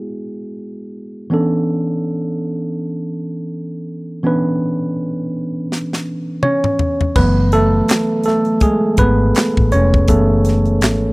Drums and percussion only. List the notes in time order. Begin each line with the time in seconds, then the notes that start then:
5.72 snare
5.93 snare
6.43 mid tom
6.64 mid tom
6.79 floor tom
7.01 floor tom
7.16 kick, crash
7.52 closed hi-hat
7.88 snare, clap, closed hi-hat
8.23 snare, closed hi-hat
8.45 closed hi-hat
8.60 kick, closed hi-hat
8.97 kick, closed hi-hat
9.35 snare, clap, closed hi-hat
9.57 kick
9.72 closed hi-hat
9.94 kick
10.08 kick, closed hi-hat
10.45 snare, closed hi-hat
10.66 closed hi-hat
10.81 snare, clap, closed hi-hat